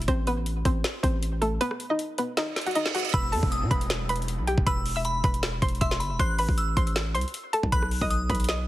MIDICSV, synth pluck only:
0, 0, Header, 1, 2, 480
1, 0, Start_track
1, 0, Tempo, 382166
1, 100, Time_signature, 4, 2, 24, 8
1, 10898, End_track
2, 0, Start_track
2, 0, Title_t, "Synth pluck"
2, 0, Program_c, 0, 84
2, 101, Note_on_c, 0, 72, 109
2, 112, Note_on_c, 0, 60, 82
2, 285, Note_off_c, 0, 72, 0
2, 291, Note_off_c, 0, 60, 0
2, 343, Note_on_c, 0, 71, 93
2, 353, Note_on_c, 0, 59, 71
2, 793, Note_off_c, 0, 71, 0
2, 798, Note_off_c, 0, 59, 0
2, 821, Note_on_c, 0, 72, 79
2, 830, Note_on_c, 0, 60, 59
2, 1272, Note_off_c, 0, 72, 0
2, 1277, Note_off_c, 0, 60, 0
2, 1295, Note_on_c, 0, 72, 84
2, 1305, Note_on_c, 0, 60, 63
2, 1749, Note_off_c, 0, 72, 0
2, 1754, Note_off_c, 0, 60, 0
2, 1778, Note_on_c, 0, 69, 82
2, 1788, Note_on_c, 0, 57, 68
2, 1963, Note_off_c, 0, 69, 0
2, 1969, Note_off_c, 0, 57, 0
2, 2020, Note_on_c, 0, 71, 126
2, 2030, Note_on_c, 0, 59, 86
2, 2365, Note_off_c, 0, 71, 0
2, 2371, Note_off_c, 0, 59, 0
2, 2387, Note_on_c, 0, 75, 80
2, 2398, Note_on_c, 0, 63, 59
2, 2719, Note_off_c, 0, 75, 0
2, 2725, Note_off_c, 0, 63, 0
2, 2743, Note_on_c, 0, 71, 71
2, 2754, Note_on_c, 0, 59, 55
2, 2926, Note_off_c, 0, 71, 0
2, 2933, Note_off_c, 0, 59, 0
2, 2981, Note_on_c, 0, 75, 85
2, 2992, Note_on_c, 0, 63, 68
2, 3326, Note_off_c, 0, 75, 0
2, 3331, Note_off_c, 0, 63, 0
2, 3347, Note_on_c, 0, 78, 78
2, 3357, Note_on_c, 0, 66, 60
2, 3434, Note_off_c, 0, 78, 0
2, 3440, Note_off_c, 0, 66, 0
2, 3460, Note_on_c, 0, 75, 88
2, 3470, Note_on_c, 0, 63, 58
2, 3644, Note_off_c, 0, 75, 0
2, 3650, Note_off_c, 0, 63, 0
2, 3701, Note_on_c, 0, 78, 79
2, 3711, Note_on_c, 0, 66, 61
2, 3884, Note_off_c, 0, 78, 0
2, 3891, Note_off_c, 0, 66, 0
2, 3941, Note_on_c, 0, 83, 122
2, 3951, Note_on_c, 0, 71, 85
2, 4125, Note_off_c, 0, 83, 0
2, 4131, Note_off_c, 0, 71, 0
2, 4173, Note_on_c, 0, 81, 93
2, 4183, Note_on_c, 0, 69, 74
2, 4627, Note_off_c, 0, 81, 0
2, 4633, Note_off_c, 0, 69, 0
2, 4656, Note_on_c, 0, 83, 84
2, 4666, Note_on_c, 0, 71, 65
2, 5109, Note_off_c, 0, 83, 0
2, 5115, Note_off_c, 0, 71, 0
2, 5141, Note_on_c, 0, 83, 81
2, 5151, Note_on_c, 0, 71, 68
2, 5592, Note_off_c, 0, 83, 0
2, 5597, Note_off_c, 0, 71, 0
2, 5620, Note_on_c, 0, 79, 80
2, 5630, Note_on_c, 0, 67, 62
2, 5804, Note_off_c, 0, 79, 0
2, 5810, Note_off_c, 0, 67, 0
2, 5860, Note_on_c, 0, 83, 111
2, 5870, Note_on_c, 0, 71, 87
2, 6205, Note_off_c, 0, 83, 0
2, 6211, Note_off_c, 0, 71, 0
2, 6228, Note_on_c, 0, 88, 86
2, 6238, Note_on_c, 0, 76, 69
2, 6559, Note_off_c, 0, 88, 0
2, 6564, Note_off_c, 0, 76, 0
2, 6582, Note_on_c, 0, 83, 84
2, 6592, Note_on_c, 0, 71, 63
2, 6765, Note_off_c, 0, 83, 0
2, 6771, Note_off_c, 0, 71, 0
2, 7058, Note_on_c, 0, 84, 83
2, 7068, Note_on_c, 0, 72, 62
2, 7243, Note_off_c, 0, 84, 0
2, 7249, Note_off_c, 0, 72, 0
2, 7297, Note_on_c, 0, 88, 89
2, 7307, Note_on_c, 0, 76, 67
2, 7750, Note_off_c, 0, 88, 0
2, 7755, Note_off_c, 0, 76, 0
2, 7782, Note_on_c, 0, 84, 111
2, 7792, Note_on_c, 0, 72, 78
2, 7965, Note_off_c, 0, 84, 0
2, 7972, Note_off_c, 0, 72, 0
2, 8023, Note_on_c, 0, 83, 94
2, 8033, Note_on_c, 0, 71, 73
2, 8473, Note_off_c, 0, 83, 0
2, 8478, Note_off_c, 0, 71, 0
2, 8500, Note_on_c, 0, 84, 79
2, 8510, Note_on_c, 0, 72, 60
2, 8951, Note_off_c, 0, 84, 0
2, 8957, Note_off_c, 0, 72, 0
2, 8975, Note_on_c, 0, 84, 86
2, 8985, Note_on_c, 0, 72, 63
2, 9429, Note_off_c, 0, 84, 0
2, 9434, Note_off_c, 0, 72, 0
2, 9459, Note_on_c, 0, 81, 79
2, 9469, Note_on_c, 0, 69, 67
2, 9643, Note_off_c, 0, 81, 0
2, 9650, Note_off_c, 0, 69, 0
2, 9700, Note_on_c, 0, 83, 124
2, 9710, Note_on_c, 0, 71, 91
2, 10045, Note_off_c, 0, 83, 0
2, 10051, Note_off_c, 0, 71, 0
2, 10068, Note_on_c, 0, 87, 80
2, 10079, Note_on_c, 0, 75, 62
2, 10399, Note_off_c, 0, 87, 0
2, 10405, Note_off_c, 0, 75, 0
2, 10425, Note_on_c, 0, 83, 69
2, 10435, Note_on_c, 0, 71, 54
2, 10607, Note_off_c, 0, 83, 0
2, 10613, Note_off_c, 0, 71, 0
2, 10662, Note_on_c, 0, 87, 87
2, 10672, Note_on_c, 0, 75, 69
2, 10898, Note_off_c, 0, 75, 0
2, 10898, Note_off_c, 0, 87, 0
2, 10898, End_track
0, 0, End_of_file